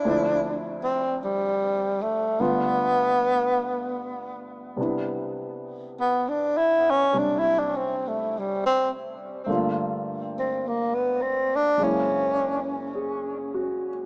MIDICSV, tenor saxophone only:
0, 0, Header, 1, 2, 480
1, 0, Start_track
1, 0, Key_signature, 0, "major"
1, 0, Tempo, 1178782
1, 21, Time_signature, 4, 2, 24, 8
1, 2902, Tempo, 1162791
1, 5764, End_track
2, 0, Start_track
2, 0, Title_t, "Tenor saxophone"
2, 0, Program_c, 0, 66
2, 0, Note_on_c, 0, 62, 81
2, 297, Note_off_c, 0, 62, 0
2, 336, Note_on_c, 0, 60, 68
2, 485, Note_off_c, 0, 60, 0
2, 504, Note_on_c, 0, 55, 68
2, 822, Note_on_c, 0, 57, 64
2, 828, Note_off_c, 0, 55, 0
2, 981, Note_on_c, 0, 59, 86
2, 987, Note_off_c, 0, 57, 0
2, 1784, Note_off_c, 0, 59, 0
2, 2443, Note_on_c, 0, 59, 68
2, 2560, Note_on_c, 0, 62, 71
2, 2566, Note_off_c, 0, 59, 0
2, 2676, Note_on_c, 0, 64, 83
2, 2682, Note_off_c, 0, 62, 0
2, 2809, Note_on_c, 0, 61, 73
2, 2815, Note_off_c, 0, 64, 0
2, 2924, Note_on_c, 0, 62, 71
2, 2930, Note_off_c, 0, 61, 0
2, 3010, Note_on_c, 0, 64, 84
2, 3016, Note_off_c, 0, 62, 0
2, 3092, Note_on_c, 0, 62, 74
2, 3098, Note_off_c, 0, 64, 0
2, 3164, Note_on_c, 0, 60, 70
2, 3170, Note_off_c, 0, 62, 0
2, 3293, Note_on_c, 0, 57, 59
2, 3300, Note_off_c, 0, 60, 0
2, 3422, Note_on_c, 0, 55, 66
2, 3429, Note_off_c, 0, 57, 0
2, 3532, Note_off_c, 0, 55, 0
2, 3535, Note_on_c, 0, 60, 73
2, 3635, Note_off_c, 0, 60, 0
2, 4248, Note_on_c, 0, 60, 68
2, 4366, Note_on_c, 0, 58, 72
2, 4372, Note_off_c, 0, 60, 0
2, 4477, Note_on_c, 0, 59, 72
2, 4483, Note_off_c, 0, 58, 0
2, 4590, Note_on_c, 0, 60, 77
2, 4596, Note_off_c, 0, 59, 0
2, 4730, Note_on_c, 0, 62, 88
2, 4736, Note_off_c, 0, 60, 0
2, 4842, Note_on_c, 0, 61, 85
2, 4849, Note_off_c, 0, 62, 0
2, 5314, Note_off_c, 0, 61, 0
2, 5764, End_track
0, 0, End_of_file